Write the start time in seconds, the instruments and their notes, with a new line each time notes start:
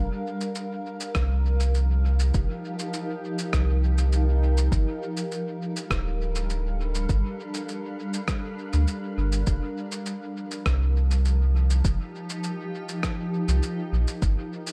Already playing: ambient pad F3 A#4 F5
0.18 ambient pad D#4
0.41 shaker
0.55 ambient pad G4, shaker
1.00 shaker
1.15 sub bass C2, kick, cross-stick, shaker
1.60 shaker
1.75 shaker
2.19 shaker
2.34 sub bass F1, kick, shaker
2.79 shaker
2.93 shaker
3.39 shaker
3.53 sub bass C2, kick, cross-stick, shaker
3.98 shaker
4.12 shaker
4.57 shaker
4.71 sub bass G1, ambient pad G3, kick, shaker
4.82 ambient pad A4
4.88 ambient pad D4
5.17 shaker
5.32 shaker
5.76 shaker
5.91 sub bass D1, kick, cross-stick, shaker
6.35 shaker
6.50 shaker
6.95 shaker
7.09 sub bass G1, kick, shaker
7.54 shaker
7.69 shaker
8.13 shaker
8.28 kick, cross-stick, shaker
8.73 sub bass D2, shaker
8.88 shaker
9.17 sub bass G1
9.32 shaker
9.46 sub bass F1, ambient pad F3, kick, shaker
9.78 ambient pad D#4
9.92 shaker
10.06 shaker
10.12 ambient pad G4
10.51 shaker
10.66 sub bass C2, kick, cross-stick, shaker
11.11 shaker
11.25 shaker
11.70 shaker
11.85 sub bass F1, kick, shaker
12.30 shaker
12.44 shaker
12.89 shaker
13.03 kick, cross-stick, shaker
13.48 sub bass C2, shaker
13.63 shaker
13.92 sub bass A#1
14.08 shaker
14.22 sub bass G1, kick, shaker
14.67 shaker